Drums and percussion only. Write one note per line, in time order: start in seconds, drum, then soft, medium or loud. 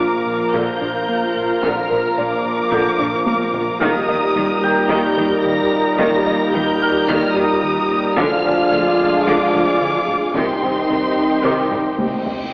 0.54 taiko medium
0.81 taiko low-mid medium
1.36 taiko low-mid medium
1.63 taiko medium
2.72 taiko medium
2.99 taiko low-mid medium
3.26 taiko high loud
3.54 taiko low loud
3.81 taiko loud
4.90 taiko medium
5.17 taiko low-mid medium
5.72 taiko low-mid medium
5.99 taiko loud
7.08 taiko medium
7.36 taiko low-mid medium
7.90 taiko low-mid medium
8.17 taiko loud
9.27 taiko medium
9.54 taiko low-mid medium
10.08 taiko low-mid medium
10.35 taiko loud
11.44 taiko medium
11.71 taiko low-mid medium
11.99 taiko high loud
12.26 taiko low loud